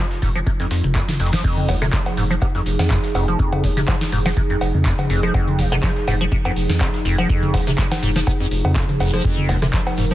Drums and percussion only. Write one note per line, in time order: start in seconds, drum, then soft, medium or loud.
0.11 snare medium
0.11 closed hi-hat soft
0.22 kick medium
0.22 open hi-hat medium
0.22 shaker medium
0.35 closed hi-hat soft
0.47 kick loud
0.47 closed hi-hat medium
0.47 shaker medium
0.60 snare soft
0.60 closed hi-hat soft
0.71 snare loud
0.71 open hi-hat loud
0.71 shaker medium
0.84 closed hi-hat soft
0.84 mid tom medium
0.95 kick loud
0.95 snare loud
0.95 clap loud
0.95 closed hi-hat medium
0.95 shaker medium
1.09 snare soft
1.09 snare medium
1.09 closed hi-hat medium
1.09 mid tom medium
1.20 snare medium
1.20 open hi-hat medium
1.20 shaker medium
1.26 snare medium
1.26 shaker medium
1.33 kick medium
1.33 snare loud
1.33 snare medium
1.33 closed hi-hat medium
1.33 shaker medium
1.39 snare medium
1.39 shaker medium
1.44 kick loud
1.44 closed hi-hat medium
1.44 crash loud
1.44 shaker medium
1.57 closed hi-hat soft
1.57 mid tom medium
1.69 snare soft
1.69 open hi-hat loud
1.69 cowbell medium
1.69 shaker medium
1.82 cross-stick medium
1.82 snare soft
1.82 mid tom medium
1.93 kick loud
1.93 snare loud
1.93 clap loud
1.93 closed hi-hat medium
1.93 shaker medium
2.06 snare soft
2.06 closed hi-hat soft
2.06 cowbell medium
2.17 open hi-hat medium
2.17 shaker medium
2.31 closed hi-hat soft
2.42 kick loud
2.42 closed hi-hat medium
2.42 cowbell medium
2.42 shaker medium
2.55 snare soft
2.55 closed hi-hat soft
2.66 open hi-hat loud
2.66 shaker medium
2.79 snare medium
2.79 closed hi-hat soft
2.79 cowbell medium
2.90 kick loud
2.90 snare loud
2.90 clap loud
2.90 closed hi-hat medium
2.90 shaker medium
3.04 snare medium
3.04 closed hi-hat medium
3.15 open hi-hat medium
3.15 cowbell medium
3.15 shaker medium
3.28 closed hi-hat medium
3.39 kick loud
3.39 closed hi-hat medium
3.39 shaker medium
3.53 closed hi-hat soft
3.53 mid tom loud
3.53 cowbell medium
3.64 kick medium
3.64 snare soft
3.64 open hi-hat loud
3.64 shaker medium
3.77 snare soft
3.77 closed hi-hat soft
3.77 mid tom medium
3.88 kick loud
3.88 snare loud
3.88 clap loud
3.88 closed hi-hat medium
3.88 open hi-hat medium
3.88 cowbell medium
4.01 snare medium
4.01 closed hi-hat soft
4.12 open hi-hat loud
4.12 shaker medium
4.26 snare medium
4.26 closed hi-hat soft
4.26 cowbell medium
4.37 kick loud
4.37 closed hi-hat medium
4.37 shaker medium
4.50 closed hi-hat soft
4.61 open hi-hat loud
4.61 cowbell medium
4.61 shaker medium
4.74 mid tom medium
4.86 kick loud
4.86 snare loud
4.86 clap loud
4.86 closed hi-hat medium
4.86 shaker medium
4.99 closed hi-hat medium
4.99 mid tom loud
4.99 cowbell medium
5.10 open hi-hat medium
5.10 shaker medium
5.23 cross-stick medium
5.23 closed hi-hat medium
5.23 closed hi-hat soft
5.34 kick loud
5.34 closed hi-hat medium
5.34 cowbell medium
5.34 shaker medium
5.48 closed hi-hat soft
5.48 mid tom loud
5.59 snare soft
5.59 open hi-hat loud
5.59 shaker medium
5.72 cross-stick medium
5.72 snare soft
5.72 mid tom medium
5.72 cowbell medium
5.83 kick loud
5.83 snare loud
5.83 clap loud
5.83 closed hi-hat medium
5.83 shaker medium
5.96 snare soft
5.96 closed hi-hat soft
6.08 open hi-hat loud
6.08 cowbell medium
6.08 shaker medium
6.21 closed hi-hat soft
6.32 kick loud
6.32 closed hi-hat medium
6.32 shaker medium
6.45 snare soft
6.45 closed hi-hat soft
6.45 cowbell medium
6.56 open hi-hat loud
6.56 shaker medium
6.70 snare medium
6.70 closed hi-hat soft
6.81 kick loud
6.81 snare loud
6.81 clap loud
6.81 closed hi-hat medium
6.81 cowbell medium
6.81 shaker medium
6.94 snare medium
6.94 closed hi-hat medium
7.05 open hi-hat loud
7.05 shaker medium
7.18 closed hi-hat medium
7.18 cowbell medium
7.29 kick loud
7.29 closed hi-hat medium
7.29 shaker medium
7.43 closed hi-hat soft
7.43 mid tom loud
7.54 kick medium
7.54 snare soft
7.54 open hi-hat loud
7.54 cowbell medium
7.54 shaker medium
7.67 snare soft
7.67 closed hi-hat soft
7.67 mid tom medium
7.78 kick loud
7.78 snare loud
7.78 clap loud
7.78 closed hi-hat medium
7.78 open hi-hat medium
7.92 snare medium
7.92 closed hi-hat soft
7.92 cowbell medium
8.03 open hi-hat medium
8.03 shaker medium
8.16 snare medium
8.27 kick loud
8.27 closed hi-hat medium
8.27 cowbell medium
8.27 shaker medium
8.40 closed hi-hat soft
8.51 open hi-hat loud
8.51 shaker medium
8.65 mid tom medium
8.65 cowbell medium
8.76 kick loud
8.76 snare loud
8.76 clap loud
8.76 closed hi-hat medium
8.76 shaker medium
8.89 closed hi-hat medium
8.89 mid tom medium
9.00 open hi-hat loud
9.00 cowbell medium
9.00 shaker medium
9.13 cross-stick medium
9.13 closed hi-hat soft
9.13 closed hi-hat medium
9.25 kick loud
9.25 closed hi-hat medium
9.25 cabasa medium
9.25 shaker medium
9.37 closed hi-hat soft
9.37 mid tom medium
9.37 cabasa soft
9.49 snare soft
9.49 open hi-hat loud
9.49 cowbell medium
9.49 cabasa medium
9.49 shaker medium
9.62 cross-stick medium
9.62 snare soft
9.62 mid tom medium
9.62 cabasa soft
9.73 kick loud
9.73 snare loud
9.73 clap loud
9.73 closed hi-hat medium
9.73 cabasa medium
9.73 shaker medium
9.86 snare soft
9.86 closed hi-hat soft
9.86 cowbell medium
9.86 cabasa soft
9.97 open hi-hat medium
9.97 cabasa loud
9.97 shaker medium
10.11 closed hi-hat soft
10.11 cabasa soft